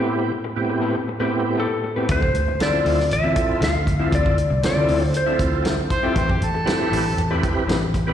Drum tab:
HH |----------------|x-x-x-o-x-x-x-x-|x-x-x-o-x-x-x-x-|x-x-x-o-x-x-x-x-|
SD |----------------|----o--o----o---|----o-------o---|----o-------o---|
BD |----------------|oo--------o---o-|oo--------o---o-|oo--------o---o-|